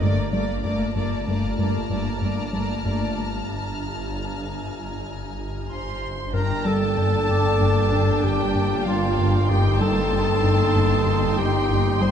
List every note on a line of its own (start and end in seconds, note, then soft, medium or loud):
0.01 0.31 G1 medium
0.01 6.30 G1 medium
0.01 0.20 G2 medium
0.01 0.10 G2 soft
0.01 0.33 A3 soft
0.01 0.33 A#3 medium
0.01 0.31 D5 soft
0.01 5.99 A#5 soft
0.32 0.40 G2 soft
0.32 0.52 G3 soft
0.32 0.63 A3 soft
0.32 0.63 A#3 soft
0.32 0.62 D5 soft
0.63 0.71 G2 soft
0.63 0.84 G2 medium
0.63 0.96 A3 soft
0.63 0.96 A#3 soft
0.63 0.95 D5 soft
0.63 4.67 A5 soft
0.96 1.04 G2 soft
0.96 1.15 G2 medium
0.96 1.27 A3 soft
0.96 1.27 A#3 soft
0.96 1.27 D5 soft
1.27 1.35 G2 soft
1.27 1.47 G2 soft
1.27 1.58 A3 soft
1.27 1.58 A#3 soft
1.27 1.57 D5 soft
1.32 6.00 F6 soft
1.58 1.66 G2 soft
1.58 1.78 G2 medium
1.58 1.90 A3 soft
1.58 1.90 A#3 soft
1.58 1.89 D5 soft
1.90 2.09 G2 soft
1.90 1.98 G2 soft
1.90 2.21 A3 soft
1.90 2.21 A#3 soft
1.90 2.20 D5 soft
2.21 2.41 G2 soft
2.21 2.30 G2 soft
2.21 2.52 A3 soft
2.21 2.53 A#3 soft
2.21 2.52 D5 soft
2.53 2.61 G2 soft
2.53 2.73 G3 soft
2.53 2.84 A3 soft
2.53 2.84 A#3 soft
2.53 2.85 D5 soft
2.85 3.04 G2 soft
2.85 2.93 G2 soft
2.85 3.17 A3 soft
2.85 3.17 A#3 soft
2.85 3.17 D5 soft
4.67 5.99 G#5 soft
5.71 6.35 C5 soft
5.71 6.30 C6 soft
6.33 12.11 G1 medium
6.33 12.11 G1 soft
6.33 12.11 G2 soft
6.33 6.53 G2 medium
6.33 12.11 A#3 soft
6.33 9.45 D4 soft
6.33 6.68 A#4 medium
6.33 12.11 G5 soft
6.33 9.45 A5 soft
6.33 6.66 A#5 soft
6.65 6.84 G3 medium
6.65 8.26 A4 medium
6.65 8.23 A5 medium
6.97 7.16 G2 medium
7.29 7.48 G2 medium
7.29 9.15 D5 soft
7.29 9.15 D6 soft
7.61 7.80 G2 medium
7.93 8.11 G2 medium
8.23 8.42 G2 soft
8.23 8.87 G4 medium
8.23 8.86 G5 soft
8.55 8.74 G2 soft
8.86 9.05 G3 soft
8.86 9.52 F4 medium
8.86 9.49 F5 soft
9.18 9.37 G2 medium
9.48 9.68 G2 medium
9.48 12.11 D#4 soft
9.48 9.80 G4 medium
9.48 9.80 G5 soft
9.48 12.11 C6 soft
9.80 10.00 G3 medium
9.80 11.39 A4 medium
9.80 11.38 A5 medium
10.13 10.32 G2 medium
10.44 10.63 G2 medium
10.76 10.95 G2 medium
11.07 11.26 G2 medium
11.37 11.57 G2 soft
11.37 12.03 G4 medium
11.37 12.02 G5 soft
11.70 11.89 G2 medium
12.01 12.11 G3 medium
12.01 12.11 C5 medium
12.01 12.11 C6 medium